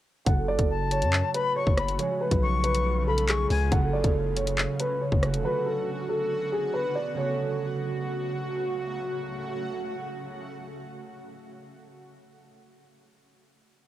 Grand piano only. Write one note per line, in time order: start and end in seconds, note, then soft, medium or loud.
0.27 0.46 F#5 medium
0.48 0.68 D5 medium
0.92 1.32 C#5 medium
1.34 1.54 B4 medium
1.56 1.97 C#5 medium
1.99 2.19 C#5 medium
2.21 2.40 B4 medium
2.64 3.04 B4 medium
3.07 3.26 A4 medium
3.29 3.69 G#4 medium
3.72 3.91 F#5 medium
3.93 4.13 D5 medium
4.37 4.77 C#5 medium
4.80 4.99 B4 medium
5.01 5.42 C#5 medium
5.45 5.64 B4 medium
5.66 5.85 A4 medium
6.09 6.50 A4 medium
6.52 6.72 G#4 medium
6.74 6.93 B4 medium
6.95 7.15 D5 medium
7.17 8.43 C#5 medium